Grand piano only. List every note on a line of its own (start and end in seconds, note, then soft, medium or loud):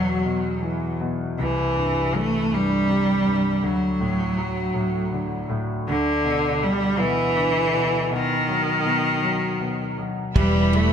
0.00 1.34 E2 medium
0.00 0.23 B2 soft
0.00 1.34 F#3 soft
0.25 0.99 B2 soft
0.62 1.35 E3 soft
1.01 1.37 B2 soft
1.38 3.59 C2 soft
1.76 2.49 G2 soft
2.13 3.59 E3 soft
2.50 3.24 G2 soft
2.88 3.60 C3 soft
3.26 3.62 G2 soft
3.63 5.83 D2 medium
4.00 4.73 A2 soft
4.38 5.83 F#3 soft
4.74 5.48 A2 soft
5.12 5.85 D3 soft
5.49 5.86 A2 soft
5.87 8.07 D2 medium
6.25 6.97 B2 soft
6.62 7.34 D3 soft
6.99 7.72 B2 soft
7.36 8.08 D3 soft
7.73 8.09 B2 soft
8.11 8.84 B2 medium
8.48 9.21 F#3 soft
8.85 9.59 B2 soft
9.23 9.97 F#3 soft
9.60 10.34 B2 soft
9.98 10.35 F#3 soft
10.36 10.53 E3 medium
10.55 10.72 E3 soft
10.73 10.91 E3 medium